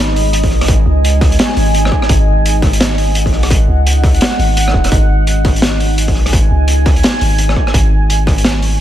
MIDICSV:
0, 0, Header, 1, 4, 480
1, 0, Start_track
1, 0, Tempo, 352941
1, 930, Time_signature, 4, 2, 24, 8
1, 11972, End_track
2, 0, Start_track
2, 0, Title_t, "Ambient pad"
2, 0, Program_c, 0, 92
2, 0, Note_on_c, 0, 56, 70
2, 0, Note_on_c, 0, 63, 92
2, 0, Note_on_c, 0, 75, 76
2, 0, Note_on_c, 0, 80, 83
2, 3570, Note_on_c, 0, 78, 82
2, 3601, Note_off_c, 0, 80, 0
2, 7411, Note_on_c, 0, 80, 79
2, 7439, Note_off_c, 0, 78, 0
2, 11250, Note_on_c, 0, 85, 83
2, 11279, Note_off_c, 0, 80, 0
2, 11972, Note_off_c, 0, 56, 0
2, 11972, Note_off_c, 0, 63, 0
2, 11972, Note_off_c, 0, 75, 0
2, 11972, Note_off_c, 0, 85, 0
2, 11972, End_track
3, 0, Start_track
3, 0, Title_t, "808-style bass"
3, 0, Program_c, 1, 38
3, 0, Note_on_c, 1, 32, 105
3, 693, Note_on_c, 1, 35, 84
3, 714, Note_off_c, 1, 32, 0
3, 916, Note_off_c, 1, 35, 0
3, 931, Note_on_c, 1, 32, 109
3, 1155, Note_off_c, 1, 32, 0
3, 1169, Note_on_c, 1, 37, 95
3, 1877, Note_off_c, 1, 37, 0
3, 2131, Note_on_c, 1, 32, 94
3, 2598, Note_off_c, 1, 32, 0
3, 2849, Note_on_c, 1, 32, 102
3, 4531, Note_on_c, 1, 35, 88
3, 4551, Note_off_c, 1, 32, 0
3, 4755, Note_off_c, 1, 35, 0
3, 4767, Note_on_c, 1, 32, 101
3, 4993, Note_off_c, 1, 32, 0
3, 5007, Note_on_c, 1, 37, 92
3, 5716, Note_off_c, 1, 37, 0
3, 5970, Note_on_c, 1, 32, 92
3, 6438, Note_off_c, 1, 32, 0
3, 6450, Note_on_c, 1, 27, 105
3, 6675, Note_off_c, 1, 27, 0
3, 6688, Note_on_c, 1, 32, 105
3, 8370, Note_on_c, 1, 35, 87
3, 8390, Note_off_c, 1, 32, 0
3, 8595, Note_off_c, 1, 35, 0
3, 8609, Note_on_c, 1, 32, 107
3, 8834, Note_off_c, 1, 32, 0
3, 8850, Note_on_c, 1, 37, 87
3, 9558, Note_off_c, 1, 37, 0
3, 9810, Note_on_c, 1, 32, 90
3, 10278, Note_off_c, 1, 32, 0
3, 10528, Note_on_c, 1, 32, 107
3, 11972, Note_off_c, 1, 32, 0
3, 11972, End_track
4, 0, Start_track
4, 0, Title_t, "Drums"
4, 221, Note_on_c, 9, 46, 57
4, 357, Note_off_c, 9, 46, 0
4, 451, Note_on_c, 9, 42, 77
4, 587, Note_off_c, 9, 42, 0
4, 590, Note_on_c, 9, 46, 53
4, 593, Note_on_c, 9, 36, 63
4, 689, Note_on_c, 9, 37, 36
4, 726, Note_off_c, 9, 46, 0
4, 729, Note_off_c, 9, 36, 0
4, 825, Note_off_c, 9, 37, 0
4, 834, Note_on_c, 9, 46, 84
4, 835, Note_on_c, 9, 37, 71
4, 928, Note_on_c, 9, 42, 82
4, 930, Note_on_c, 9, 36, 125
4, 970, Note_off_c, 9, 46, 0
4, 971, Note_off_c, 9, 37, 0
4, 1064, Note_off_c, 9, 42, 0
4, 1066, Note_off_c, 9, 36, 0
4, 1423, Note_on_c, 9, 42, 73
4, 1559, Note_off_c, 9, 42, 0
4, 1650, Note_on_c, 9, 36, 113
4, 1652, Note_on_c, 9, 46, 56
4, 1656, Note_on_c, 9, 37, 60
4, 1786, Note_off_c, 9, 36, 0
4, 1788, Note_off_c, 9, 46, 0
4, 1792, Note_off_c, 9, 37, 0
4, 1794, Note_on_c, 9, 42, 53
4, 1889, Note_off_c, 9, 42, 0
4, 1889, Note_on_c, 9, 42, 86
4, 1899, Note_on_c, 9, 38, 127
4, 2025, Note_off_c, 9, 42, 0
4, 2035, Note_off_c, 9, 38, 0
4, 2129, Note_on_c, 9, 46, 56
4, 2265, Note_off_c, 9, 46, 0
4, 2373, Note_on_c, 9, 42, 73
4, 2509, Note_off_c, 9, 42, 0
4, 2521, Note_on_c, 9, 37, 77
4, 2609, Note_off_c, 9, 37, 0
4, 2609, Note_on_c, 9, 36, 65
4, 2609, Note_on_c, 9, 37, 39
4, 2745, Note_off_c, 9, 36, 0
4, 2745, Note_off_c, 9, 37, 0
4, 2752, Note_on_c, 9, 37, 69
4, 2845, Note_on_c, 9, 42, 90
4, 2849, Note_on_c, 9, 36, 126
4, 2888, Note_off_c, 9, 37, 0
4, 2981, Note_off_c, 9, 42, 0
4, 2985, Note_off_c, 9, 36, 0
4, 3340, Note_on_c, 9, 42, 79
4, 3476, Note_off_c, 9, 42, 0
4, 3569, Note_on_c, 9, 36, 116
4, 3574, Note_on_c, 9, 46, 57
4, 3582, Note_on_c, 9, 37, 47
4, 3705, Note_off_c, 9, 36, 0
4, 3710, Note_off_c, 9, 46, 0
4, 3715, Note_on_c, 9, 42, 63
4, 3718, Note_off_c, 9, 37, 0
4, 3813, Note_off_c, 9, 42, 0
4, 3813, Note_on_c, 9, 42, 96
4, 3815, Note_on_c, 9, 38, 127
4, 3949, Note_off_c, 9, 42, 0
4, 3951, Note_off_c, 9, 38, 0
4, 4052, Note_on_c, 9, 46, 57
4, 4188, Note_off_c, 9, 46, 0
4, 4285, Note_on_c, 9, 42, 82
4, 4421, Note_off_c, 9, 42, 0
4, 4432, Note_on_c, 9, 36, 63
4, 4441, Note_on_c, 9, 46, 47
4, 4524, Note_on_c, 9, 37, 38
4, 4568, Note_off_c, 9, 36, 0
4, 4577, Note_off_c, 9, 46, 0
4, 4660, Note_off_c, 9, 37, 0
4, 4664, Note_on_c, 9, 46, 80
4, 4669, Note_on_c, 9, 37, 59
4, 4768, Note_on_c, 9, 36, 123
4, 4774, Note_on_c, 9, 42, 96
4, 4800, Note_off_c, 9, 46, 0
4, 4805, Note_off_c, 9, 37, 0
4, 4904, Note_off_c, 9, 36, 0
4, 4910, Note_off_c, 9, 42, 0
4, 5257, Note_on_c, 9, 42, 79
4, 5393, Note_off_c, 9, 42, 0
4, 5488, Note_on_c, 9, 36, 113
4, 5495, Note_on_c, 9, 37, 49
4, 5497, Note_on_c, 9, 46, 53
4, 5624, Note_off_c, 9, 36, 0
4, 5631, Note_off_c, 9, 37, 0
4, 5633, Note_off_c, 9, 46, 0
4, 5635, Note_on_c, 9, 42, 53
4, 5722, Note_off_c, 9, 42, 0
4, 5722, Note_on_c, 9, 42, 97
4, 5739, Note_on_c, 9, 38, 119
4, 5858, Note_off_c, 9, 42, 0
4, 5875, Note_off_c, 9, 38, 0
4, 5976, Note_on_c, 9, 46, 51
4, 6112, Note_off_c, 9, 46, 0
4, 6213, Note_on_c, 9, 42, 82
4, 6349, Note_off_c, 9, 42, 0
4, 6362, Note_on_c, 9, 37, 75
4, 6448, Note_off_c, 9, 37, 0
4, 6448, Note_on_c, 9, 36, 63
4, 6448, Note_on_c, 9, 37, 34
4, 6584, Note_off_c, 9, 36, 0
4, 6584, Note_off_c, 9, 37, 0
4, 6584, Note_on_c, 9, 42, 53
4, 6592, Note_on_c, 9, 37, 65
4, 6684, Note_off_c, 9, 42, 0
4, 6684, Note_on_c, 9, 42, 79
4, 6689, Note_on_c, 9, 36, 125
4, 6728, Note_off_c, 9, 37, 0
4, 6820, Note_off_c, 9, 42, 0
4, 6825, Note_off_c, 9, 36, 0
4, 7168, Note_on_c, 9, 42, 70
4, 7304, Note_off_c, 9, 42, 0
4, 7408, Note_on_c, 9, 37, 47
4, 7409, Note_on_c, 9, 36, 109
4, 7409, Note_on_c, 9, 46, 51
4, 7544, Note_off_c, 9, 37, 0
4, 7545, Note_off_c, 9, 36, 0
4, 7545, Note_off_c, 9, 46, 0
4, 7563, Note_on_c, 9, 42, 52
4, 7645, Note_on_c, 9, 38, 117
4, 7651, Note_off_c, 9, 42, 0
4, 7651, Note_on_c, 9, 42, 95
4, 7781, Note_off_c, 9, 38, 0
4, 7787, Note_off_c, 9, 42, 0
4, 7892, Note_on_c, 9, 46, 56
4, 8028, Note_off_c, 9, 46, 0
4, 8131, Note_on_c, 9, 42, 66
4, 8267, Note_off_c, 9, 42, 0
4, 8267, Note_on_c, 9, 46, 51
4, 8272, Note_on_c, 9, 36, 62
4, 8369, Note_on_c, 9, 37, 36
4, 8403, Note_off_c, 9, 46, 0
4, 8408, Note_off_c, 9, 36, 0
4, 8505, Note_off_c, 9, 37, 0
4, 8513, Note_on_c, 9, 37, 58
4, 8519, Note_on_c, 9, 46, 84
4, 8609, Note_on_c, 9, 36, 121
4, 8611, Note_on_c, 9, 42, 88
4, 8649, Note_off_c, 9, 37, 0
4, 8655, Note_off_c, 9, 46, 0
4, 8745, Note_off_c, 9, 36, 0
4, 8747, Note_off_c, 9, 42, 0
4, 9081, Note_on_c, 9, 42, 74
4, 9217, Note_off_c, 9, 42, 0
4, 9327, Note_on_c, 9, 37, 53
4, 9329, Note_on_c, 9, 36, 106
4, 9329, Note_on_c, 9, 46, 59
4, 9463, Note_off_c, 9, 37, 0
4, 9465, Note_off_c, 9, 36, 0
4, 9465, Note_off_c, 9, 46, 0
4, 9468, Note_on_c, 9, 42, 50
4, 9565, Note_off_c, 9, 42, 0
4, 9565, Note_on_c, 9, 42, 81
4, 9577, Note_on_c, 9, 38, 127
4, 9701, Note_off_c, 9, 42, 0
4, 9713, Note_off_c, 9, 38, 0
4, 9808, Note_on_c, 9, 46, 59
4, 9944, Note_off_c, 9, 46, 0
4, 10042, Note_on_c, 9, 42, 73
4, 10178, Note_off_c, 9, 42, 0
4, 10188, Note_on_c, 9, 37, 75
4, 10286, Note_off_c, 9, 37, 0
4, 10286, Note_on_c, 9, 37, 39
4, 10288, Note_on_c, 9, 36, 58
4, 10422, Note_off_c, 9, 37, 0
4, 10424, Note_off_c, 9, 36, 0
4, 10433, Note_on_c, 9, 37, 66
4, 10528, Note_on_c, 9, 36, 115
4, 10530, Note_on_c, 9, 42, 86
4, 10569, Note_off_c, 9, 37, 0
4, 10664, Note_off_c, 9, 36, 0
4, 10666, Note_off_c, 9, 42, 0
4, 11014, Note_on_c, 9, 42, 76
4, 11150, Note_off_c, 9, 42, 0
4, 11248, Note_on_c, 9, 36, 104
4, 11253, Note_on_c, 9, 37, 53
4, 11260, Note_on_c, 9, 46, 53
4, 11384, Note_off_c, 9, 36, 0
4, 11389, Note_off_c, 9, 37, 0
4, 11396, Note_off_c, 9, 46, 0
4, 11397, Note_on_c, 9, 42, 54
4, 11485, Note_on_c, 9, 38, 113
4, 11490, Note_off_c, 9, 42, 0
4, 11490, Note_on_c, 9, 42, 79
4, 11621, Note_off_c, 9, 38, 0
4, 11626, Note_off_c, 9, 42, 0
4, 11728, Note_on_c, 9, 46, 55
4, 11864, Note_off_c, 9, 46, 0
4, 11972, End_track
0, 0, End_of_file